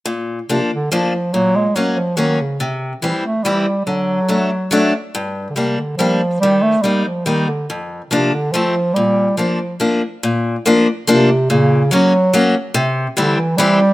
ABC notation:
X:1
M:3/4
L:1/16
Q:"Swing" 1/4=142
K:Bb
V:1 name="Steel-string acoustic guitar"
B,,4 [F,B,D]2 z2 [F,B,D]2 z2 | B,,4 [_G,B,_D]2 z2 [G,B,D]2 z2 | C,4 [=E,G,C]2 z2 [E,G,C]2 z2 | D,4 [^F,A,D]2 z2 [F,A,D]2 z2 |
G,,4 [G,B,D]2 z2 [G,B,D]2 z2 | E,4 [G,B,E]2 z2 [G,B,E]2 z2 | F,,4 [F,B,D]2 z2 [F,A,C]2 z2 | B,,4 [F,B,D]2 z2 [F,B,D]2 z2 |
B,,4 [F,B,D]2 z2 [F,B,D]2 z2 | B,,4 [_G,B,_D]2 z2 [G,B,D]2 z2 | C,4 [=E,G,C]2 z2 [E,G,C]2 z2 |]
V:2 name="Bass clarinet" clef=bass
z4 C,2 D,2 F,4 | _G,2 _A,2 G,2 F,2 E,2 _D,2 | z4 =E,2 A,2 G,4 | ^F,8- F,2 z2 |
z3 z/2 D,/2 C,2 D,2 F,4 | G,2 A,2 G,2 F,2 E,2 D,2 | z4 C,2 D,2 F,4 | G,4 F,4 z4 |
z8 C,4 | _D,4 _G,6 z2 | z4 D,2 =E,2 G,4 |]